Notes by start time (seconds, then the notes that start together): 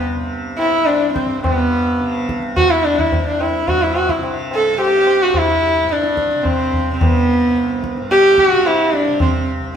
Already playing: C2 G2 C3
0.15 C3
0.59 E4, tabla na
0.69 C2
0.86 D4, tabla na
1.14 C4, tabla ke
1.25 G2
1.43 G2 B3, tabla na, tabla ge
2.00 C3, tabla te
2.15 tabla te
2.29 tabla ke
2.42 tabla te
2.57 C3 F#4, tabla na, tabla ge
2.70 E4
2.84 D4, tabla te
2.99 E4, tabla ge
3.11 C2, tabla tin, tabla ge
3.27 D4
3.40 E4, tabla na
3.65 G2 F#4, tabla tin, tabla ge
3.82 E4
3.95 F#4, tabla na
4.09 E4, tabla ke
4.19 C3
4.23 tabla na
4.51 A4, tabla na
4.74 C3
4.79 G4, tabla na
5.07 tabla na
5.23 F#4
5.27 C2
5.34 tabla na, tabla ge
5.39 E4
5.84 G2
5.89 D4, tabla te
6.03 tabla te
6.17 tabla ke
6.31 C3, tabla te
6.44 C4, tabla na, tabla ge
6.73 tabla ge
6.90 C3 C4
7.01 B3, tabla na, tabla ge
7.44 C2
7.57 tabla te
7.70 tabla te
7.84 tabla ke
7.97 G2, tabla te
8.11 G4, tabla te
8.38 F#4, tabla ke
8.52 C3
8.66 E4, tabla na
8.94 D4, tabla te
9.08 C3
9.20 C4, tabla na, tabla ge
9.60 C2